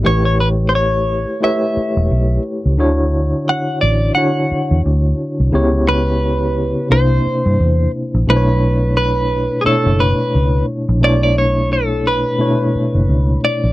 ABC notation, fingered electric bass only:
X:1
M:4/4
L:1/16
Q:"Swing 16ths" 1/4=87
K:Bm
V:1 name="Fingered electric bass" clef=bass
A,,,6- A,,, z4 E,,, B,,,2 z C,, | D,,4 z2 A,,,2 z3 E,, D,,2 z =C,, | C,,6- C,, z =C,,2 z G,, E,,2 z _B,,, | B,,,6- B,,, z2 F,,,2 z C,,2 z ^A,,, |
B,,,6- B,,, z4 F,,, C,,2 z ^A,,, |]